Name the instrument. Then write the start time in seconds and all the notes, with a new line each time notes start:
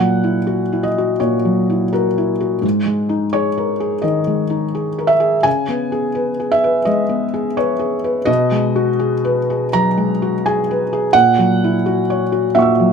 felt piano
Already playing: A#2 F#5
0.00 F#3
0.24 E4
0.47 F#4
0.72 E4
0.83 D#5
0.98 F#4
1.20 A#2 C#5
1.45 F#3
1.70 E4
1.93 F#4 A#4
2.18 E4
2.40 F#4
2.62 G#2
2.86 G#3
3.09 D#4
3.33 G#4 C#5
3.58 A#4
3.80 G#4
4.02 D#3 D#5
4.27 G#3
4.50 D#4
4.75 G#4
4.99 A#4
5.07 E5
5.20 G#4
5.43 C#3 G#5
5.68 B3
5.92 G#4
6.15 B4
6.40 G#4
6.52 E5
6.64 B4
6.85 G#3 D#5
7.09 B3
7.34 G#4
7.57 B4 C#5
7.79 G#4
8.04 B4
8.25 B2 D#5
8.52 G#3
8.76 F#4
8.99 G#4
9.25 B4
9.50 G#4
9.73 F#3 A#5
9.98 G#3
10.22 F#4
10.46 G#4 G#5
10.71 B4
10.93 G#4
11.13 A#2 F#5
11.38 F#3
11.64 E4
11.86 F#4
12.10 C#5
12.32 F#4
12.55 A#2 E5 F#5 C#6
12.62 E6
12.80 F#3